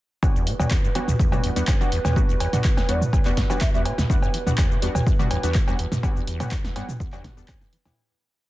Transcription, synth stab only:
0.23 0.57 G3 medium
0.23 0.57 B3 medium
0.23 0.57 D4 medium
0.23 0.57 F#4 medium
0.59 0.75 G3 medium
0.59 0.75 B3 medium
0.59 0.75 D4 medium
0.59 0.75 F#4 medium
0.95 1.06 G3 medium
0.95 1.06 B3 medium
0.95 1.06 D4 medium
0.95 1.06 F#4 loud
1.32 1.53 G3 medium
1.32 1.53 B3 medium
1.32 1.53 D4 medium
1.32 1.53 F#4 loud
1.56 1.66 G3 loud
1.56 1.66 B3 medium
1.56 1.66 D4 medium
1.56 1.66 F#4 loud
1.80 1.90 G3 medium
1.80 1.90 B3 medium
1.80 1.90 D4 medium
1.80 1.90 F#4 loud
2.16 2.50 G3 medium
2.16 2.50 B3 medium
2.16 2.50 D4 medium
2.16 2.50 F#4 medium
2.53 2.69 G3 medium
2.53 2.69 B3 medium
2.53 2.69 D4 medium
2.53 2.69 F#4 medium
2.89 2.99 G3 medium
2.89 2.99 B3 medium
2.89 2.99 D4 medium
2.89 2.99 F#4 loud
3.26 3.47 G3 loud
3.26 3.47 B3 medium
3.26 3.47 D4 medium
3.26 3.47 F#4 loud
3.50 3.59 G3 loud
3.50 3.59 B3 medium
3.50 3.59 D4 medium
3.50 3.59 F#4 loud
3.74 3.84 G3 medium
3.74 3.84 B3 medium
3.74 3.84 D4 medium
3.74 3.84 F#4 loud
4.10 4.44 G3 medium
4.10 4.44 B3 medium
4.10 4.44 D4 medium
4.10 4.44 F#4 medium
4.47 4.62 G3 medium
4.47 4.62 B3 medium
4.47 4.62 D4 medium
4.47 4.62 F#4 medium
4.82 4.93 G3 medium
4.82 4.93 B3 medium
4.82 4.93 D4 medium
4.82 4.93 F#4 loud
5.19 5.40 G3 loud
5.19 5.40 B3 medium
5.19 5.40 D4 medium
5.19 5.40 F#4 loud
5.43 5.53 G3 loud
5.43 5.53 B3 medium
5.43 5.53 D4 medium
5.43 5.53 F#4 loud
5.68 5.77 G3 medium
5.68 5.77 B3 medium
5.68 5.77 D4 medium
5.68 5.77 F#4 loud
6.03 6.37 G3 medium
6.03 6.37 B3 medium
6.03 6.37 D4 medium
6.03 6.37 F#4 medium
6.40 6.56 G3 medium
6.40 6.56 B3 medium
6.40 6.56 D4 medium
6.40 6.56 F#4 medium
6.76 6.86 G3 medium
6.76 6.87 B3 medium
6.76 6.87 D4 medium
6.76 6.87 F#4 loud
7.13 7.34 G3 loud
7.13 7.34 B3 medium
7.13 7.34 D4 medium
7.13 7.34 F#4 loud
7.37 7.47 G3 medium
7.37 7.47 B3 medium
7.37 7.47 D4 medium
7.37 7.47 A4 medium
7.85 7.95 G3 loud
7.85 7.95 B3 medium
7.85 7.95 D4 medium
7.85 7.95 E4 loud

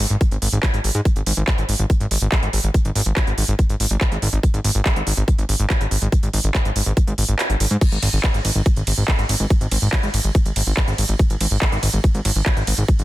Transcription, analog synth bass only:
0.10 0.16 G#1 medium
0.31 0.37 G#1 medium
0.42 0.48 G#1 loud
0.53 0.59 G#1 medium
0.74 0.80 G#1 medium
0.84 0.90 G#1 loud
0.95 1.01 G#2 medium
1.16 1.22 G#1 medium
1.26 1.32 G#1 loud
1.37 1.43 G#1 medium
1.58 1.64 G#1 medium
1.69 1.75 G#1 medium
1.79 1.85 G#1 medium
2.00 2.06 G#1 medium
2.11 2.17 G#1 loud
2.22 2.28 G#1 medium
2.43 2.49 G#1 medium
2.53 2.59 G#1 loud
2.64 2.70 G#1 medium
2.85 2.91 G#1 medium
2.95 3.01 G#1 loud
3.06 3.12 G#1 medium
3.27 3.33 G#1 medium
3.38 3.44 G#1 loud
3.48 3.54 G#1 loud
3.69 3.75 G#1 medium
3.80 3.86 G#1 loud
3.91 3.97 G#1 medium
4.12 4.18 G#1 medium
4.22 4.28 G#1 loud
4.33 4.39 G#1 loud
4.54 4.60 G#1 medium
4.64 4.70 G#1 loud
4.75 4.81 G#1 medium
4.96 5.02 G#1 medium
5.07 5.13 G#1 loud
5.17 5.23 G#1 medium
5.38 5.44 G#1 medium
5.49 5.55 G#1 medium
5.60 5.66 G#1 medium
5.81 5.87 G#1 loud
5.91 5.97 G#1 loud
6.02 6.08 G#1 medium
6.23 6.29 G#1 medium
6.33 6.39 G#1 loud
6.44 6.50 G#1 medium
6.65 6.71 G#1 medium
6.76 6.82 G#1 loud
6.86 6.92 G#1 medium
7.07 7.13 G#1 medium
7.18 7.24 G#1 loud
7.29 7.35 G#1 medium
7.50 7.56 G#1 medium
7.60 7.66 G#1 loud
7.71 7.77 G#2 medium
7.92 7.98 G#1 medium
8.03 8.09 G#1 loud
8.13 8.19 G#1 medium
8.34 8.40 G#1 medium
8.45 8.51 G#1 loud
8.55 8.61 G#1 medium
8.76 8.82 G#1 medium
8.87 8.93 G#1 loud
8.98 9.04 G#1 medium
9.19 9.25 G#1 loud
9.29 9.35 G#1 loud
9.40 9.46 G#1 medium
9.61 9.67 G#1 medium
9.72 9.78 G#1 loud
9.82 9.88 G#1 medium
10.03 10.09 G#1 medium
10.14 10.20 G#1 loud
10.24 10.30 G#1 medium
10.45 10.51 G#1 medium
10.56 10.62 G#1 loud
10.67 10.73 G#1 medium
10.88 10.94 G#1 medium
10.98 11.04 G#1 loud
11.09 11.15 G#1 loud
11.30 11.36 G#1 medium
11.41 11.47 G#1 loud
11.51 11.57 G#1 medium
11.72 11.78 G#1 medium
11.83 11.89 G#1 loud
11.93 11.99 G#1 medium
12.14 12.20 G#1 medium
12.25 12.31 G#1 loud
12.36 12.42 G#1 medium
12.57 12.63 G#1 medium
12.67 12.73 G#1 loud
12.78 12.84 G#1 medium
12.99 13.04 G#1 medium

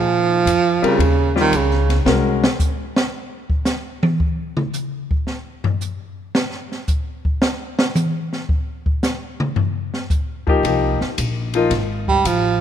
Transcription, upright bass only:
0.00 0.43 A#2 medium
0.46 0.80 F2 medium
0.83 muted upright bass stroke soft
0.98 1.51 D#2 medium
1.52 2.04 C#2 medium
2.05 2.42 C2 medium
10.63 10.98 C2 medium
11.01 muted upright bass stroke soft
11.18 11.70 A#1 medium
11.70 12.23 G#1 medium
12.25 12.61 A1 medium

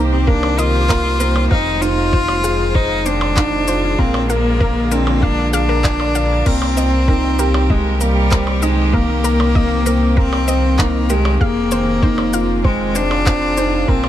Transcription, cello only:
0.00 0.14 A#3 loud
0.12 0.29 C4 medium
0.28 0.60 D4 loud
0.58 1.50 F4 loud
1.51 1.83 D#4 loud
1.82 2.76 F4 loud
2.75 3.08 D#4 loud
3.06 4.00 D4 loud
3.99 4.31 C4 loud
4.30 4.93 A#3 loud
4.92 5.24 C4 medium
5.22 5.53 D4 loud
5.53 6.48 D4 loud
6.46 7.71 C4 loud
7.70 8.02 G#3 medium
8.01 8.64 G3 loud
8.62 8.95 G#3 loud
8.93 10.18 A#3 loud
10.17 10.81 C4 loud
10.79 11.11 A#3 medium
11.10 11.42 G#3 loud
11.41 12.64 A#3 loud
12.65 12.97 G#3 loud
12.95 13.90 D4 loud
13.88 14.09 C4 loud

